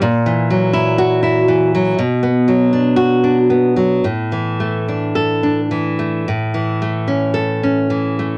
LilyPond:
\new Staff \with { instrumentName = "Nylon-string guitar" } { \time 4/4 \key a \mixolydian \tempo 4 = 56 << { r4 fis'8 r4. fis'8 r8 | r4 a'8 r4. a'8 r8 | } \\ { ais,16 e16 fis16 e'8 e'16 e16 fis16 b,16 b16 fis16 d'8 d'16 b16 fis16 | a,16 e16 a16 d'8 d'16 e16 a16 a,16 e16 a16 cis'8 cis'16 e16 a16 | } >> }